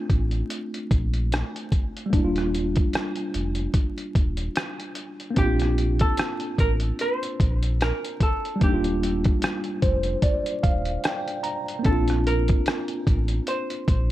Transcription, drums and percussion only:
0.10 kick medium
0.10 closed hi-hat medium
0.31 closed hi-hat soft
0.50 closed hi-hat medium
0.74 closed hi-hat soft
0.91 kick medium
0.91 closed hi-hat medium
1.14 closed hi-hat soft
1.32 cross-stick loud
1.32 closed hi-hat medium
1.56 closed hi-hat soft
1.72 kick medium
1.72 closed hi-hat medium
1.97 closed hi-hat soft
2.13 kick medium
2.13 closed hi-hat medium
2.36 cross-stick soft
2.36 closed hi-hat soft
2.55 closed hi-hat medium
2.76 kick medium
2.76 closed hi-hat soft
2.93 cross-stick loud
2.93 closed hi-hat medium
3.16 closed hi-hat soft
3.34 closed hi-hat medium
3.55 closed hi-hat soft
3.74 kick medium
3.74 closed hi-hat medium
3.98 closed hi-hat soft
4.15 kick medium
4.15 closed hi-hat medium
4.37 closed hi-hat soft
4.56 cross-stick loud
4.56 closed hi-hat medium
4.80 closed hi-hat soft
4.95 closed hi-hat medium
5.20 closed hi-hat soft
5.36 kick medium
5.36 closed hi-hat medium
5.59 cross-stick soft
5.59 closed hi-hat soft
5.78 closed hi-hat medium
5.99 kick medium
5.99 closed hi-hat soft
6.17 cross-stick loud
6.17 closed hi-hat medium
6.40 closed hi-hat soft
6.58 kick medium
6.58 closed hi-hat medium
6.80 closed hi-hat soft
6.99 closed hi-hat medium
7.23 closed hi-hat medium
7.40 kick medium
7.40 closed hi-hat medium
7.63 closed hi-hat soft
7.81 cross-stick loud
7.81 closed hi-hat medium
8.05 closed hi-hat soft
8.20 kick medium
8.20 closed hi-hat medium
8.45 closed hi-hat soft
8.61 kick loud
8.61 closed hi-hat medium
8.84 closed hi-hat soft
9.03 closed hi-hat medium
9.24 kick loud
9.24 closed hi-hat soft
9.42 cross-stick loud
9.42 closed hi-hat medium
9.64 closed hi-hat soft
9.82 kick medium
9.82 closed hi-hat medium
10.03 closed hi-hat soft
10.22 kick medium
10.22 closed hi-hat medium
10.46 closed hi-hat soft
10.64 kick medium
10.64 closed hi-hat medium
10.85 closed hi-hat soft
11.04 cross-stick loud
11.04 closed hi-hat medium
11.28 closed hi-hat soft
11.44 closed hi-hat medium
11.68 closed hi-hat soft
11.85 kick loud
11.85 closed hi-hat medium
12.08 cross-stick soft
12.08 closed hi-hat soft
12.27 closed hi-hat medium
12.48 kick medium
12.48 closed hi-hat soft
12.66 cross-stick loud
12.66 closed hi-hat medium
12.88 closed hi-hat soft
13.07 kick medium
13.07 closed hi-hat medium
13.28 closed hi-hat soft
13.47 closed hi-hat medium
13.70 closed hi-hat medium
13.88 kick loud
13.88 closed hi-hat medium

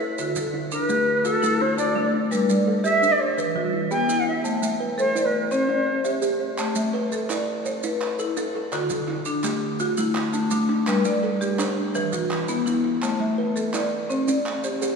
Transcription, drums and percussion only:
0.18 maracas medium
0.36 maracas medium
0.72 maracas medium
0.89 maracas medium
1.25 maracas medium
1.43 maracas medium
1.78 maracas medium
2.32 maracas medium
2.49 maracas medium
2.85 maracas medium
3.03 maracas medium
3.38 maracas medium
3.91 maracas medium
4.09 maracas medium
4.45 maracas medium
4.63 maracas medium
4.99 maracas medium
5.16 maracas medium
5.51 maracas soft
6.05 maracas medium
6.22 maracas medium
6.58 clap medium
6.58 maracas medium
6.75 clap soft
6.75 maracas medium
6.94 clap soft
7.12 maracas medium
7.30 clap medium
7.30 maracas medium
7.66 maracas medium
7.83 maracas medium
8.01 clap medium
8.19 maracas medium
8.37 clap soft
8.37 maracas medium
8.55 clap soft
8.72 clap medium
8.72 maracas medium
8.90 clap soft
8.90 maracas medium
9.08 clap soft
9.25 maracas medium
9.43 clap medium
9.43 maracas medium
9.80 maracas medium
9.97 maracas medium
10.15 clap medium
10.33 maracas medium
10.51 clap soft
10.51 maracas medium
10.70 clap soft
10.87 clap medium
10.87 maracas medium
11.05 clap soft
11.05 maracas medium
11.24 clap soft
11.41 maracas medium
11.59 clap medium
11.59 maracas medium
11.95 maracas medium
12.13 maracas medium
12.31 clap medium
12.48 maracas medium
12.67 clap soft
12.67 maracas medium
13.02 clap medium
13.02 maracas medium
13.20 clap soft
13.56 maracas medium
13.74 clap medium
13.74 maracas medium
14.10 maracas medium
14.28 maracas medium
14.46 clap medium
14.64 maracas medium
14.82 clap soft
14.82 maracas medium

